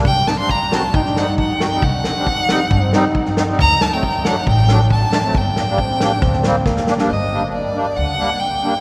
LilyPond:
<<
  \new Staff \with { instrumentName = "Violin" } { \time 4/4 \key g \minor \tempo 4 = 136 g''8 a''16 c'''16 bes''8 a''8 g''8 fis''8 fis''8 g''8 | fis''2.~ fis''8 r8 | bes''8 a''16 g''8. fis''8 g''4 a''4 | g''2. r4 |
ees''4 d''4 fis''4 g''4 | }
  \new Staff \with { instrumentName = "Trombone" } { \time 4/4 \key g \minor r2 ees'16 d'8 ees'4 r16 | r2 d'16 c'8 ees'4 r16 | r1 | r4 c'8. d'16 c'4 bes4 |
r1 | }
  \new Staff \with { instrumentName = "Accordion" } { \time 4/4 \key g \minor r8 <c' ees'>16 <g c' d'>16 r8 <g c' fis'>16 r8. <g c' ees'>16 r8. <c' fis'>16 <g c' ees'>16 | r8 <c' ees'>16 <g c' d'>16 r8 <g c' ees'>16 r8. <g c' ees'>16 r8. <c' ees'>16 <g c' ees'>16 | r8 <a d'>16 <fis a c'>16 r8 <fis a d'>16 r8. <fis a d'>16 r8. <a d'>16 <fis a c'>16 | r8 <bes d'>16 <g bes d'>16 r8 <g bes d'>16 r8. <g bes c'>16 r8. <bes d'>16 <g bes d'>16 |
r8 <g bes d'>16 r8. <g bes d'>16 r8. <g bes d'>16 r8. <g bes d'>16 r16 | }
  \new Staff \with { instrumentName = "Upright bass" } { \clef bass \time 4/4 \key g \minor c,8 r4. g,2 | c,8 r4. g,2 | d,8 r4. a,,2 | g,,8 r4. d,2 |
g,,2 d,8 r4. | }
  \new DrumStaff \with { instrumentName = "Drums" } \drummode { \time 4/4 bd8 sn8 bd8 sn8 bd16 sn16 sn8 bd8 sn8 | bd8 sn8 bd8 sn8 bd8 sn8 bd16 sn16 sn8 | bd8 sn8 bd8 sn8 bd16 sn16 sn8 bd8 sn8 | bd8 sn8 bd8 sn8 <bd sn>16 sn16 sn8 <bd sn>16 sn16 sn16 sn16 |
r4 r4 r4 r4 | }
>>